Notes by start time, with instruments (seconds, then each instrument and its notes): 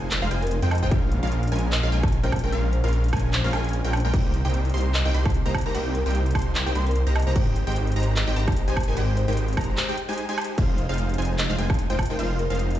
Already playing: detuned saw bass F1, supersaw synth G#3 D#4 F4 C5 G#5, synth pluck G#5
0.11 clap, closed hi-hat
0.22 detuned saw bass F1, supersaw synth G#3 D#4 F4 C5 F5, synth pluck F5
0.31 detuned saw bass F1, supersaw synth G#3 D#4 F4 C5 G#5, synth pluck G#5, closed hi-hat
0.42 marimba A#4, closed hi-hat
0.47 closed hi-hat
0.51 marimba A#4, closed hi-hat
0.62 detuned saw bass F2, supersaw synth G#3 D#4 F4 C5 G5, synth pluck G5, closed hi-hat
0.71 marimba D#5, closed hi-hat, high woodblock
0.75 closed hi-hat
0.78 closed hi-hat
0.83 detuned saw bass F1, supersaw synth G#3 D#4 F4 C5 G5, marimba C5, synth pluck G5
0.91 detuned saw bass A#1, supersaw synth G#3 C#4 F4 A#4 F5, synth pluck F5, kick, closed hi-hat
1.12 closed hi-hat
1.23 detuned saw bass A#1, supersaw synth G#3 C#4 F4 A#4 F5, synth pluck F5, closed hi-hat
1.27 closed hi-hat
1.32 closed hi-hat
1.43 closed hi-hat
1.47 closed hi-hat
1.52 detuned saw bass A#1, supersaw synth G#3 C#4 F4 A#4 G#5, synth pluck G#5, closed hi-hat
1.56 closed hi-hat
1.59 closed hi-hat
1.72 marimba D#5, clap, closed hi-hat
1.83 detuned saw bass A#1, supersaw synth G#3 C#4 F4 A#4 F5, marimba D#5, synth pluck F5
1.92 detuned saw bass A#1, supersaw synth G#3 C#4 F4 A#4 G#5, synth pluck G#5, closed hi-hat
2.03 kick, closed hi-hat, high woodblock
2.08 closed hi-hat
2.12 closed hi-hat
2.23 detuned saw bass A#1, supersaw synth G#3 C#4 F4 A#4 G5, marimba C5, synth pluck G5, closed hi-hat
2.32 kick, closed hi-hat, high woodblock
2.36 closed hi-hat
2.39 closed hi-hat
2.44 detuned saw bass A#1, supersaw synth G#3 C#4 F4 A#4 G5, marimba A#4, synth pluck G5
2.52 detuned saw bass A#1, supersaw synth G#3 C#4 F4 A#4 F5, marimba A#4, synth pluck F5, closed hi-hat
2.73 marimba C5, closed hi-hat
2.84 detuned saw bass A#1, supersaw synth G#3 C#4 F4 A#4 F5, marimba A#4, synth pluck F5, closed hi-hat
2.88 closed hi-hat
2.93 closed hi-hat
3.04 closed hi-hat
3.08 closed hi-hat
3.13 detuned saw bass A#1, supersaw synth G#3 C#4 F4 A#4 G#5, synth pluck G#5, kick, closed hi-hat, high woodblock
3.17 closed hi-hat
3.20 closed hi-hat
3.33 marimba C5, clap, closed hi-hat
3.44 detuned saw bass A#1, supersaw synth G#3 C#4 F4 A#4 F5, marimba C5, synth pluck F5
3.53 detuned saw bass A#1, supersaw synth G#3 C#4 F4 A#4 G#5, synth pluck G#5, closed hi-hat, high woodblock
3.64 closed hi-hat
3.69 closed hi-hat
3.73 closed hi-hat
3.85 detuned saw bass A#1, supersaw synth G#3 C#4 F4 A#4 G5, synth pluck G5, closed hi-hat
3.93 closed hi-hat, high woodblock
3.97 closed hi-hat
4.00 closed hi-hat
4.05 detuned saw bass A#1, supersaw synth G#3 C#4 F4 A#4 G5, synth pluck G5
4.14 detuned saw bass C2, supersaw synth A#3 D#4 G4 C5 G5, synth pluck G5, kick, closed hi-hat, crash
4.34 closed hi-hat
4.45 detuned saw bass C2, supersaw synth A#3 D#4 G4 C5 G5, synth pluck G5, closed hi-hat
4.49 closed hi-hat
4.54 closed hi-hat
4.65 closed hi-hat
4.69 closed hi-hat
4.74 detuned saw bass C2, supersaw synth A#3 D#4 G4 C5 C6, synth pluck C6, closed hi-hat
4.78 closed hi-hat
4.81 closed hi-hat
4.94 marimba D#5, clap, closed hi-hat
5.05 detuned saw bass C2, supersaw synth A#3 D#4 G4 C5 G5, marimba D#5, synth pluck G5
5.14 detuned saw bass C2, supersaw synth A#3 D#4 G4 C5 C6, synth pluck C6, closed hi-hat
5.26 kick, closed hi-hat, high woodblock
5.30 closed hi-hat
5.34 closed hi-hat
5.46 detuned saw bass C2, supersaw synth A#3 D#4 G4 C5 A#5, marimba C5, synth pluck A#5, closed hi-hat
5.54 kick, closed hi-hat, high woodblock
5.58 closed hi-hat
5.61 closed hi-hat
5.66 detuned saw bass C2, supersaw synth A#3 D#4 G4 C5 A#5, marimba A#4, synth pluck A#5
5.75 detuned saw bass C2, supersaw synth A#3 D#4 G4 C5 G5, marimba A#4, synth pluck G5, closed hi-hat, crash
5.95 marimba A#4, closed hi-hat
6.06 detuned saw bass C2, supersaw synth A#3 D#4 G4 C5 G5, marimba A#4, synth pluck G5, closed hi-hat
6.10 closed hi-hat
6.15 closed hi-hat
6.26 closed hi-hat
6.31 closed hi-hat
6.35 detuned saw bass C2, supersaw synth A#3 D#4 G4 C5 C6, synth pluck C6, kick, closed hi-hat, high woodblock
6.39 closed hi-hat
6.42 closed hi-hat
6.55 clap, closed hi-hat
6.66 detuned saw bass C2, supersaw synth A#3 D#4 G4 C5 G5, synth pluck G5
6.75 detuned saw bass C2, supersaw synth A#3 D#4 G4 C5 C6, synth pluck C6, closed hi-hat
6.86 marimba A#4, closed hi-hat
6.91 closed hi-hat
6.95 marimba A#4, closed hi-hat
7.07 detuned saw bass C2, supersaw synth A#3 D#4 G4 C5 A#5, synth pluck A#5, closed hi-hat
7.16 marimba D#5, closed hi-hat, high woodblock
7.19 closed hi-hat
7.22 closed hi-hat
7.27 detuned saw bass C2, supersaw synth A#3 D#4 G4 C5 A#5, marimba C5, synth pluck A#5
7.36 detuned saw bass G#1, supersaw synth G#3 D#4 G4 C5 G5, synth pluck G5, kick, closed hi-hat, crash
7.56 closed hi-hat
7.67 detuned saw bass G#1, supersaw synth G#3 D#4 G4 C5 G5, synth pluck G5, closed hi-hat
7.72 closed hi-hat
7.76 closed hi-hat
7.87 closed hi-hat
7.92 closed hi-hat
7.96 detuned saw bass G#1, supersaw synth G#3 D#4 G4 C5 A#5, synth pluck A#5, closed hi-hat
8.00 closed hi-hat
8.03 closed hi-hat
8.16 marimba D#5, clap, closed hi-hat
8.27 detuned saw bass G#1, supersaw synth G#3 D#4 G4 C5 G5, marimba D#5, synth pluck G5
8.36 detuned saw bass G#1, supersaw synth G#3 D#4 G4 C5 A#5, synth pluck A#5, closed hi-hat
8.48 kick, closed hi-hat, high woodblock
8.52 closed hi-hat
8.56 closed hi-hat
8.68 detuned saw bass G#1, supersaw synth G#3 D#4 G4 C5 G#5, marimba C5, synth pluck G#5, closed hi-hat
8.77 kick, closed hi-hat, high woodblock
8.80 closed hi-hat
8.83 closed hi-hat
8.88 detuned saw bass G#1, supersaw synth G#3 D#4 G4 C5 G#5, marimba A#4, synth pluck G#5
8.97 detuned saw bass G#1, supersaw synth G#3 D#4 G4 C5 G5, marimba A#4, synth pluck G5, closed hi-hat, crash
9.17 marimba C5, closed hi-hat
9.28 detuned saw bass G#1, supersaw synth G#3 D#4 G4 C5 G5, marimba A#4, synth pluck G5, closed hi-hat
9.33 closed hi-hat
9.37 closed hi-hat
9.48 closed hi-hat
9.53 closed hi-hat
9.57 detuned saw bass G#1, supersaw synth G#3 D#4 G4 C5 A#5, synth pluck A#5, kick, closed hi-hat, high woodblock
9.61 closed hi-hat
9.64 closed hi-hat
9.77 marimba C5, clap, closed hi-hat
9.89 supersaw synth G#3 D#4 G4 C5 G5, synth pluck G5
9.97 closed hi-hat
10.09 supersaw synth G#3 D#4 G4 C5 G#5, synth pluck G#5, closed hi-hat
10.13 closed hi-hat
10.18 closed hi-hat
10.29 supersaw synth G#3 D#4 G4 C5 G#5, synth pluck G#5, closed hi-hat
10.38 closed hi-hat, high woodblock
10.41 closed hi-hat
10.44 closed hi-hat
10.58 detuned saw bass F1, supersaw synth G#3 D#4 F4 C5 F5, synth pluck F5, kick, closed hi-hat, crash
10.78 closed hi-hat
10.89 detuned saw bass F1, supersaw synth G#3 D#4 F4 C5 F5, synth pluck F5, closed hi-hat
10.94 closed hi-hat
10.98 closed hi-hat
11.09 closed hi-hat
11.14 closed hi-hat
11.18 detuned saw bass F1, supersaw synth G#3 D#4 F4 C5 G#5, synth pluck G#5, closed hi-hat
11.22 closed hi-hat
11.25 closed hi-hat
11.38 marimba D#5, clap, closed hi-hat
11.50 detuned saw bass F1, supersaw synth G#3 D#4 F4 C5 F5, marimba D#5, synth pluck F5
11.59 detuned saw bass F1, supersaw synth G#3 D#4 F4 C5 G#5, synth pluck G#5, closed hi-hat
11.70 kick, closed hi-hat, high woodblock
11.74 closed hi-hat
11.79 closed hi-hat
11.90 detuned saw bass F1, supersaw synth G#3 D#4 F4 C5 G5, marimba C5, synth pluck G5, closed hi-hat
11.99 kick, closed hi-hat, high woodblock
12.03 closed hi-hat
12.05 closed hi-hat
12.10 detuned saw bass F1, supersaw synth G#3 D#4 F4 C5 G5, marimba A#4, synth pluck G5
12.19 detuned saw bass F1, supersaw synth G#3 D#4 F4 C5 F5, marimba A#4, synth pluck F5, closed hi-hat, crash
12.39 marimba A#4, closed hi-hat
12.50 detuned saw bass F1, supersaw synth G#3 D#4 F4 C5 F5, marimba A#4, synth pluck F5, closed hi-hat
12.55 closed hi-hat
12.59 closed hi-hat
12.71 closed hi-hat
12.75 closed hi-hat